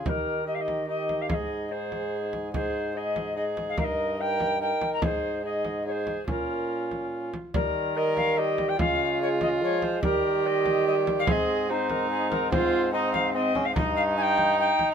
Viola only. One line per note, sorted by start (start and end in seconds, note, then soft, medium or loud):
0.06 0.46 G4 medium
0.46 0.87 G4 medium
0.89 1.31 G4 medium
1.29 1.71 G#4 medium
1.72 2.52 G#4 medium
2.54 2.94 G#4 medium
2.95 3.35 G#4 medium
3.36 3.79 G#4 medium
3.77 4.19 A#4 medium
4.20 4.60 A#4 medium
4.62 5.04 A#4 medium
5.03 5.43 G#4 medium
5.43 5.84 G#4 medium
5.85 6.27 G#4 medium
6.28 7.32 F4 medium
7.96 8.40 A#4 medium
8.38 8.78 G4 medium
8.78 10.01 F4 loud
10.04 11.26 G4 loud
11.28 11.72 G#4 medium
11.70 12.52 D#4 medium
12.53 12.93 F4 loud
12.94 13.34 D#4 medium
13.34 13.75 C4 medium
13.76 14.94 D#4 loud